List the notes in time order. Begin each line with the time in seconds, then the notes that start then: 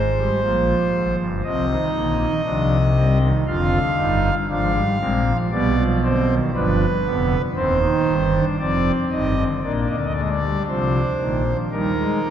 Already playing: G#1 G#2 C5
0.18 G3
0.43 A#1 A#2 F3
0.94 G#1 G#2
1.19 G1 G2
1.44 C2 C3 F3 C4 D#5
1.69 D#3 D#4
1.94 A#1 A#2 D3
2.19 D#3
2.45 C2 C3 F3 D4
2.97 G3 C4
3.22 D#3
3.46 F1 F2 D3 F4 F5
3.98 G1 G2 D#4
4.49 G#1 G#2 F3 D4 F5
4.75 G3
5.00 A#1 A#2 G#3 C4
5.26 F3
5.52 B1 B2 G3 B3 D5
5.78 F3
6.03 D3 C4 C5
6.28 D#3
6.53 G1 G2 F3 D4 B4
7.05 F1 F2 D3 B3
7.56 D#1 D#2 D#3 C4 C5
7.82 D#4
8.07 G1 G2
8.33 D4
8.59 F1 F2 F3 C4 D5
9.11 G1 G2 D#3 D#5
9.37 D3
9.63 A#1 A#2 A#3 D4 D5
9.71 D#5
9.80 D5
9.88 D2 D3 D#5
9.96 D5
10.04 D#5
10.13 G#3 D5
10.20 D#5
10.29 D5
10.42 G3
10.68 C2 C3 F3 C5
11.20 A#1 A#2 D#3
11.46 F3
11.72 D#2 D#3 G3 D#4 A#4
11.98 G#3
12.24 D2 D3 A#3